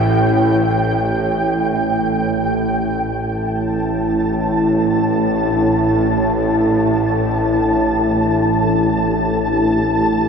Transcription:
0, 0, Header, 1, 4, 480
1, 0, Start_track
1, 0, Tempo, 500000
1, 9875, End_track
2, 0, Start_track
2, 0, Title_t, "Synth texture"
2, 0, Program_c, 0, 99
2, 0, Note_on_c, 0, 79, 69
2, 2934, Note_on_c, 0, 81, 73
2, 2940, Note_off_c, 0, 79, 0
2, 9875, Note_off_c, 0, 81, 0
2, 9875, End_track
3, 0, Start_track
3, 0, Title_t, "Analog synth pad"
3, 0, Program_c, 1, 89
3, 2933, Note_on_c, 1, 57, 80
3, 4928, Note_on_c, 1, 62, 63
3, 5820, Note_on_c, 1, 67, 64
3, 9875, Note_off_c, 1, 57, 0
3, 9875, Note_off_c, 1, 62, 0
3, 9875, Note_off_c, 1, 67, 0
3, 9875, End_track
4, 0, Start_track
4, 0, Title_t, "Synth drone"
4, 0, Program_c, 2, 95
4, 0, Note_on_c, 2, 33, 78
4, 0, Note_on_c, 2, 45, 71
4, 2919, Note_off_c, 2, 33, 0
4, 2929, Note_off_c, 2, 45, 0
4, 2930, Note_on_c, 2, 33, 66
4, 2940, Note_on_c, 2, 45, 68
4, 9875, Note_off_c, 2, 33, 0
4, 9875, Note_off_c, 2, 45, 0
4, 9875, End_track
0, 0, End_of_file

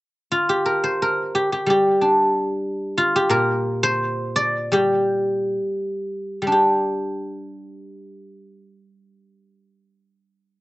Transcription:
0, 0, Header, 1, 2, 480
1, 0, Start_track
1, 0, Tempo, 661521
1, 486, Time_signature, 2, 2, 24, 8
1, 2402, Tempo, 711744
1, 3362, Tempo, 829876
1, 3842, Tempo, 978793
1, 4322, Tempo, 1015228
1, 5282, Tempo, 1050788
1, 6211, End_track
2, 0, Start_track
2, 0, Title_t, "Guzheng"
2, 0, Program_c, 0, 107
2, 229, Note_on_c, 0, 65, 57
2, 357, Note_on_c, 0, 67, 49
2, 476, Note_on_c, 0, 70, 53
2, 607, Note_on_c, 0, 72, 51
2, 738, Note_off_c, 0, 70, 0
2, 741, Note_on_c, 0, 70, 54
2, 976, Note_off_c, 0, 67, 0
2, 979, Note_on_c, 0, 67, 54
2, 1103, Note_off_c, 0, 67, 0
2, 1106, Note_on_c, 0, 67, 49
2, 1208, Note_on_c, 0, 55, 43
2, 1231, Note_off_c, 0, 67, 0
2, 1234, Note_on_c, 0, 67, 60
2, 1461, Note_on_c, 0, 62, 31
2, 2044, Note_off_c, 0, 72, 0
2, 2062, Note_off_c, 0, 65, 0
2, 2159, Note_on_c, 0, 65, 62
2, 2283, Note_off_c, 0, 70, 0
2, 2288, Note_off_c, 0, 67, 0
2, 2291, Note_on_c, 0, 67, 62
2, 2391, Note_on_c, 0, 46, 47
2, 2397, Note_on_c, 0, 70, 68
2, 2403, Note_off_c, 0, 62, 0
2, 2626, Note_off_c, 0, 55, 0
2, 2754, Note_on_c, 0, 72, 75
2, 3109, Note_on_c, 0, 74, 81
2, 3351, Note_on_c, 0, 55, 47
2, 3356, Note_off_c, 0, 67, 0
2, 3359, Note_on_c, 0, 67, 62
2, 3764, Note_off_c, 0, 70, 0
2, 3806, Note_off_c, 0, 65, 0
2, 3837, Note_off_c, 0, 46, 0
2, 3964, Note_off_c, 0, 72, 0
2, 4156, Note_off_c, 0, 74, 0
2, 4255, Note_off_c, 0, 55, 0
2, 4261, Note_on_c, 0, 55, 33
2, 4286, Note_on_c, 0, 62, 36
2, 4310, Note_off_c, 0, 67, 0
2, 4311, Note_on_c, 0, 67, 34
2, 6173, Note_off_c, 0, 67, 0
2, 6211, Note_off_c, 0, 55, 0
2, 6211, Note_off_c, 0, 62, 0
2, 6211, End_track
0, 0, End_of_file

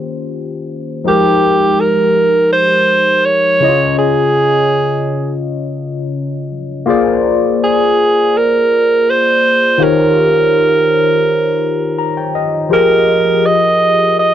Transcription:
0, 0, Header, 1, 3, 480
1, 0, Start_track
1, 0, Key_signature, -4, "minor"
1, 0, Tempo, 729040
1, 696, Time_signature, 4, 2, 24, 8
1, 9443, End_track
2, 0, Start_track
2, 0, Title_t, "Alto saxophone"
2, 0, Program_c, 0, 65
2, 709, Note_on_c, 0, 67, 95
2, 1185, Note_on_c, 0, 70, 96
2, 1195, Note_off_c, 0, 67, 0
2, 1658, Note_off_c, 0, 70, 0
2, 1662, Note_on_c, 0, 72, 109
2, 2141, Note_on_c, 0, 73, 116
2, 2151, Note_off_c, 0, 72, 0
2, 2619, Note_off_c, 0, 73, 0
2, 2624, Note_on_c, 0, 68, 100
2, 3554, Note_off_c, 0, 68, 0
2, 5031, Note_on_c, 0, 68, 96
2, 5511, Note_on_c, 0, 70, 102
2, 5521, Note_off_c, 0, 68, 0
2, 5992, Note_on_c, 0, 72, 114
2, 6002, Note_off_c, 0, 70, 0
2, 6472, Note_on_c, 0, 70, 101
2, 6482, Note_off_c, 0, 72, 0
2, 8141, Note_off_c, 0, 70, 0
2, 8382, Note_on_c, 0, 70, 99
2, 8863, Note_on_c, 0, 75, 110
2, 8872, Note_off_c, 0, 70, 0
2, 9336, Note_off_c, 0, 75, 0
2, 9344, Note_on_c, 0, 75, 105
2, 9443, Note_off_c, 0, 75, 0
2, 9443, End_track
3, 0, Start_track
3, 0, Title_t, "Tine electric piano"
3, 0, Program_c, 1, 4
3, 0, Control_c, 1, 64, 127
3, 0, Note_on_c, 1, 51, 53
3, 0, Note_on_c, 1, 58, 50
3, 0, Note_on_c, 1, 61, 53
3, 0, Note_on_c, 1, 65, 50
3, 0, Note_on_c, 1, 67, 51
3, 0, Note_on_c, 1, 72, 60
3, 663, Note_off_c, 1, 51, 0
3, 665, Note_off_c, 1, 58, 0
3, 669, Note_off_c, 1, 61, 0
3, 671, Note_off_c, 1, 65, 0
3, 675, Note_off_c, 1, 67, 0
3, 676, Note_off_c, 1, 72, 0
3, 687, Note_on_c, 1, 53, 59
3, 694, Note_on_c, 1, 63, 58
3, 702, Note_on_c, 1, 67, 58
3, 704, Control_c, 1, 64, 0
3, 709, Note_on_c, 1, 56, 56
3, 715, Note_on_c, 1, 70, 72
3, 804, Control_c, 1, 64, 127
3, 2346, Note_off_c, 1, 53, 0
3, 2349, Note_off_c, 1, 63, 0
3, 2354, Note_off_c, 1, 67, 0
3, 2357, Note_off_c, 1, 56, 0
3, 2360, Note_off_c, 1, 70, 0
3, 2369, Note_on_c, 1, 49, 61
3, 2376, Note_on_c, 1, 61, 57
3, 2383, Note_on_c, 1, 64, 48
3, 2385, Control_c, 1, 64, 0
3, 2390, Note_on_c, 1, 73, 61
3, 2397, Note_on_c, 1, 75, 69
3, 2423, Note_off_c, 1, 64, 0
3, 2427, Note_on_c, 1, 65, 59
3, 2502, Control_c, 1, 64, 127
3, 4266, Note_off_c, 1, 49, 0
3, 4269, Note_off_c, 1, 61, 0
3, 4276, Note_off_c, 1, 73, 0
3, 4280, Note_off_c, 1, 75, 0
3, 4295, Note_off_c, 1, 65, 0
3, 4515, Note_on_c, 1, 58, 77
3, 4522, Note_on_c, 1, 65, 73
3, 4530, Note_on_c, 1, 68, 67
3, 4537, Note_on_c, 1, 72, 68
3, 4543, Note_on_c, 1, 74, 89
3, 4544, Control_c, 1, 64, 0
3, 4639, Control_c, 1, 64, 127
3, 6417, Note_off_c, 1, 58, 0
3, 6420, Note_off_c, 1, 65, 0
3, 6424, Note_off_c, 1, 68, 0
3, 6427, Note_off_c, 1, 72, 0
3, 6431, Note_off_c, 1, 74, 0
3, 6437, Note_on_c, 1, 51, 68
3, 6442, Note_on_c, 1, 63, 60
3, 6448, Note_on_c, 1, 65, 59
3, 6454, Note_on_c, 1, 67, 60
3, 6459, Note_on_c, 1, 72, 59
3, 6463, Control_c, 1, 64, 0
3, 6465, Note_on_c, 1, 73, 71
3, 6564, Control_c, 1, 64, 127
3, 7891, Note_on_c, 1, 82, 65
3, 8003, Note_off_c, 1, 82, 0
3, 8014, Note_on_c, 1, 79, 62
3, 8124, Note_off_c, 1, 79, 0
3, 8132, Note_on_c, 1, 75, 65
3, 8337, Note_off_c, 1, 51, 0
3, 8339, Note_off_c, 1, 63, 0
3, 8342, Note_off_c, 1, 65, 0
3, 8345, Note_off_c, 1, 67, 0
3, 8347, Note_off_c, 1, 72, 0
3, 8350, Note_off_c, 1, 73, 0
3, 8355, Note_off_c, 1, 75, 0
3, 8355, Note_on_c, 1, 53, 65
3, 8363, Note_on_c, 1, 65, 56
3, 8366, Note_on_c, 1, 67, 62
3, 8371, Note_on_c, 1, 68, 59
3, 8377, Note_on_c, 1, 70, 59
3, 8379, Control_c, 1, 64, 0
3, 8382, Note_on_c, 1, 75, 70
3, 8517, Control_c, 1, 64, 127
3, 9443, Note_off_c, 1, 53, 0
3, 9443, Note_off_c, 1, 65, 0
3, 9443, Note_off_c, 1, 67, 0
3, 9443, Note_off_c, 1, 68, 0
3, 9443, Note_off_c, 1, 70, 0
3, 9443, Note_off_c, 1, 75, 0
3, 9443, End_track
0, 0, End_of_file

